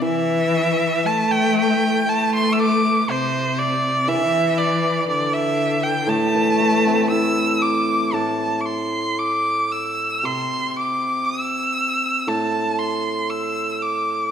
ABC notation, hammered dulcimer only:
X:1
M:2/4
L:1/16
Q:1/4=59
K:none
V:1 name="Hammered dulcimer" clef=bass
E,8- | E,4 z4 | E,8 | A,, E, A, C E4 |
A,,8 | C,8 | A,,8 |]